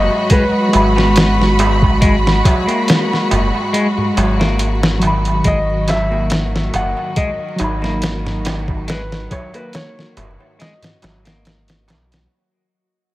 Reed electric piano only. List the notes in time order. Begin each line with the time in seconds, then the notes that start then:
Already playing: G#3 F#4 B5
0.69 G#3 F#4
0.77 B5
4.99 D#3 F#3
5.07 B5
7.56 F#3 D#4
7.64 B5